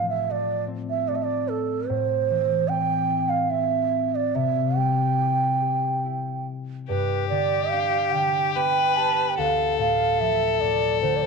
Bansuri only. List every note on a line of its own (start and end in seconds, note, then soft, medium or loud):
0.09 0.33 E5 medium
0.31 0.64 D5 medium
0.90 1.10 E5 medium
1.08 1.17 D5 medium
1.15 1.25 E5 medium
1.23 1.50 D5 medium
1.49 1.90 A4 medium
1.88 2.70 C5 medium
2.68 3.31 G5 medium
3.29 3.52 F5 medium
3.50 4.16 E5 medium
4.15 4.37 D5 medium
4.35 4.78 E5 medium
4.77 6.47 G5 medium
6.89 7.28 B4 medium
7.29 7.72 D5 medium
7.71 8.13 F5 medium
8.12 8.54 G5 medium
8.55 8.98 G5 medium
8.97 9.31 A5 medium
9.29 9.40 G5 medium
9.39 9.79 F5 medium
9.80 10.21 F5 medium
10.20 10.54 E5 medium
10.54 10.62 E5 medium
10.61 11.01 D5 medium
11.01 11.18 C5 medium
11.16 11.23 D5 medium
11.22 11.27 C5 medium